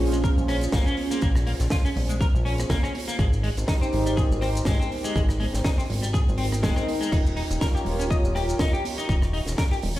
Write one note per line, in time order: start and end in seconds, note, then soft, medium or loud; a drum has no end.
0.00 0.31 A#1 medium
0.00 0.21 C#4 medium
0.00 0.21 F4 medium
0.00 0.22 G#4 medium
0.00 0.22 C5 loud
0.00 open hi-hat loud
0.12 0.16 G#3 medium
0.12 closed hi-hat medium
0.12 shaker medium
0.24 0.33 C#4 medium
0.24 0.33 F4 medium
0.24 0.33 G#4 medium
0.24 0.28 A#4 medium
0.24 0.33 C5 medium
0.24 kick loud
0.24 closed hi-hat medium
0.24 high conga medium
0.24 shaker medium
0.37 0.68 A#1 medium
0.37 low conga medium
0.37 shaker soft
0.48 0.63 C#4 medium
0.48 0.55 C#4 loud
0.48 0.63 F4 medium
0.48 0.63 G#4 medium
0.48 0.63 C5 loud
0.48 cross-stick medium
0.48 open hi-hat loud
0.61 closed hi-hat medium
0.61 shaker medium
0.72 0.83 A#1 medium
0.72 0.83 A#3 medium
0.72 kick loud
0.72 snare loud
0.72 closed hi-hat medium
0.72 shaker medium
0.86 0.95 C#4 medium
0.86 shaker medium
0.97 1.12 C#4 medium
0.97 1.12 F4 medium
0.97 1.12 G#4 medium
0.97 1.12 C5 loud
0.97 open hi-hat loud
0.97 high conga medium
1.11 1.20 A#3 loud
1.11 closed hi-hat medium
1.11 shaker medium
1.21 1.54 A#1 loud
1.21 1.26 A#3 loud
1.21 kick loud
1.21 closed hi-hat medium
1.21 shaker medium
1.35 cross-stick medium
1.35 shaker soft
1.47 1.51 A#3 medium
1.47 open hi-hat loud
1.59 1.68 A#1 medium
1.59 1.68 C#4 medium
1.59 1.68 F4 medium
1.59 1.68 G#4 medium
1.59 1.68 C5 medium
1.59 snare soft
1.59 closed hi-hat medium
1.59 shaker medium
1.70 1.75 F4 medium
1.70 kick loud
1.70 snare loud
1.70 closed hi-hat medium
1.70 shaker medium
1.85 1.88 C#4 medium
1.85 open hi-hat medium
1.85 shaker soft
1.96 2.28 A#1 medium
1.96 open hi-hat medium
1.96 high conga soft
1.96 low conga medium
2.09 2.13 G#3 medium
2.09 closed hi-hat medium
2.09 shaker medium
2.21 2.25 A#4 medium
2.21 kick loud
2.21 closed hi-hat medium
2.21 shaker medium
2.34 2.65 A#1 medium
2.34 low conga medium
2.34 shaker soft
2.45 2.54 C#4 medium
2.45 2.52 C#4 loud
2.45 2.54 F4 medium
2.45 2.55 G#4 medium
2.45 2.55 C5 medium
2.45 open hi-hat medium
2.58 2.71 C#4 medium
2.58 2.71 F4 medium
2.58 2.71 G#4 medium
2.58 2.71 C5 medium
2.58 cross-stick medium
2.58 closed hi-hat medium
2.58 high conga medium
2.58 shaker medium
2.70 2.80 A#1 medium
2.70 2.80 A#3 loud
2.70 kick loud
2.70 snare loud
2.70 closed hi-hat medium
2.70 shaker medium
2.83 2.92 C#4 medium
2.83 cross-stick medium
2.83 shaker soft
2.95 open hi-hat loud
2.95 high conga medium
3.08 3.16 A#3 loud
3.08 closed hi-hat medium
3.08 shaker medium
3.19 3.51 G#1 loud
3.19 3.23 G#3 medium
3.19 kick loud
3.19 closed hi-hat medium
3.19 shaker medium
3.33 shaker soft
3.43 3.48 G#3 medium
3.43 open hi-hat medium
3.56 3.65 G#1 medium
3.56 4.14 D#4 loud
3.56 4.15 G4 medium
3.56 4.15 A#4 medium
3.56 4.15 C5 loud
3.56 closed hi-hat medium
3.56 shaker medium
3.68 3.72 D#4 loud
3.68 kick loud
3.68 snare loud
3.68 closed hi-hat medium
3.68 shaker medium
3.81 3.85 C4 medium
3.81 shaker medium
3.93 4.25 G#1 medium
3.93 open hi-hat loud
3.93 low conga medium
4.06 4.10 G3 medium
4.06 closed hi-hat medium
4.06 shaker medium
4.17 4.27 D#4 medium
4.17 4.27 G4 medium
4.17 4.21 G#4 loud
4.17 4.27 A#4 medium
4.17 4.27 C5 medium
4.17 kick loud
4.17 closed hi-hat medium
4.17 high conga medium
4.17 shaker medium
4.31 4.62 G#1 medium
4.31 low conga medium
4.31 shaker soft
4.41 4.48 C4 loud
4.41 4.56 D#4 medium
4.41 4.56 G4 medium
4.41 4.56 A#4 medium
4.41 4.57 C5 loud
4.41 cross-stick medium
4.41 open hi-hat medium
4.55 closed hi-hat medium
4.55 shaker medium
4.65 4.76 G#1 medium
4.65 4.77 G#3 loud
4.65 kick loud
4.65 snare loud
4.65 closed hi-hat medium
4.65 shaker medium
4.80 4.88 C4 medium
4.80 shaker medium
4.91 5.05 D#4 medium
4.91 5.06 G4 medium
4.91 5.06 A#4 medium
4.91 5.06 C5 loud
4.91 open hi-hat medium
4.91 high conga medium
5.04 5.13 G#3 loud
5.04 closed hi-hat medium
5.04 shaker medium
5.16 5.48 G#1 medium
5.16 5.20 G#3 medium
5.16 kick loud
5.16 closed hi-hat medium
5.16 shaker medium
5.29 cross-stick medium
5.29 shaker medium
5.40 5.44 G#3 medium
5.40 open hi-hat medium
5.40 high conga medium
5.54 5.62 G#1 medium
5.54 5.61 D#4 medium
5.54 5.61 G4 medium
5.54 5.62 A#4 medium
5.54 5.62 C5 medium
5.54 snare soft
5.54 closed hi-hat medium
5.54 shaker medium
5.64 5.69 D#4 loud
5.64 kick loud
5.64 snare loud
5.64 closed hi-hat medium
5.64 shaker medium
5.78 5.82 C4 medium
5.78 open hi-hat medium
5.78 shaker medium
5.90 6.22 G#1 medium
5.90 open hi-hat loud
5.90 high conga medium
5.90 low conga medium
6.02 6.06 G3 medium
6.02 closed hi-hat medium
6.02 shaker medium
6.13 6.18 G#4 loud
6.13 kick loud
6.13 closed hi-hat medium
6.13 shaker medium
6.28 6.65 G#1 medium
6.28 low conga medium
6.28 shaker soft
6.38 6.45 C4 loud
6.38 7.11 D#4 medium
6.38 7.12 A#4 medium
6.38 7.12 D#5 medium
6.38 7.11 G5 medium
6.38 open hi-hat loud
6.52 cross-stick medium
6.52 closed hi-hat medium
6.52 high conga medium
6.52 shaker medium
6.63 6.73 D#1 medium
6.63 6.73 G#3 loud
6.63 kick loud
6.63 snare loud
6.63 closed hi-hat medium
6.63 shaker medium
6.76 6.85 C4 medium
6.76 cross-stick medium
6.76 shaker medium
6.88 open hi-hat loud
6.88 high conga medium
7.01 7.09 G#3 loud
7.01 closed hi-hat medium
7.01 shaker medium
7.12 7.44 D#1 medium
7.12 7.16 D#4 medium
7.12 kick loud
7.12 closed hi-hat medium
7.12 crash medium
7.12 shaker medium
7.26 shaker soft
7.36 7.41 D#4 medium
7.36 open hi-hat loud
7.50 7.59 D#1 medium
7.50 8.08 F4 medium
7.50 8.08 G4 medium
7.50 8.09 A#4 medium
7.50 8.09 C#5 loud
7.50 closed hi-hat medium
7.50 shaker medium
7.61 7.66 A#4 loud
7.61 kick loud
7.61 snare loud
7.61 closed hi-hat medium
7.61 shaker medium
7.75 7.78 G4 medium
7.75 shaker soft
7.85 8.18 D#1 medium
7.85 open hi-hat loud
7.85 low conga medium
7.99 8.03 C#4 medium
7.99 closed hi-hat medium
7.99 shaker medium
8.10 8.20 F4 medium
8.10 8.20 G4 medium
8.10 8.20 A#4 medium
8.10 8.20 C#5 loud
8.10 8.15 D#5 loud
8.10 kick loud
8.10 closed hi-hat medium
8.10 high conga medium
8.10 shaker medium
8.24 8.55 D#1 medium
8.24 low conga medium
8.24 shaker medium
8.35 8.50 F4 medium
8.35 8.42 G4 loud
8.35 8.50 G4 medium
8.35 8.50 A#4 medium
8.35 8.50 C#5 loud
8.35 cross-stick medium
8.35 open hi-hat medium
8.49 closed hi-hat medium
8.49 shaker medium
8.59 8.70 D#1 medium
8.59 8.70 D#4 loud
8.59 kick loud
8.59 snare loud
8.59 closed hi-hat medium
8.59 shaker medium
8.73 8.82 G4 medium
8.73 shaker soft
8.84 8.99 F4 loud
8.84 8.99 G4 medium
8.84 8.99 A#4 medium
8.84 8.99 C#5 loud
8.84 open hi-hat loud
8.84 high conga medium
8.98 9.06 D#4 loud
8.98 closed hi-hat medium
8.98 shaker medium
9.09 9.41 D#1 loud
9.09 9.13 D#4 medium
9.09 kick loud
9.09 closed hi-hat medium
9.09 shaker medium
9.22 cross-stick medium
9.22 shaker soft
9.33 9.38 D#4 medium
9.33 open hi-hat loud
9.46 9.55 D#1 medium
9.46 9.55 F4 medium
9.46 9.55 G4 medium
9.46 9.55 A#4 medium
9.46 9.55 C#5 medium
9.46 snare soft
9.46 closed hi-hat medium
9.46 shaker medium
9.58 9.62 A#4 loud
9.58 kick loud
9.58 snare loud
9.58 closed hi-hat medium
9.58 shaker medium
9.71 9.75 G4 medium
9.71 open hi-hat medium
9.71 shaker soft
9.82 9.99 D#1 medium
9.82 open hi-hat loud
9.82 high conga medium
9.82 low conga medium
9.96 9.99 C#4 medium
9.96 closed hi-hat medium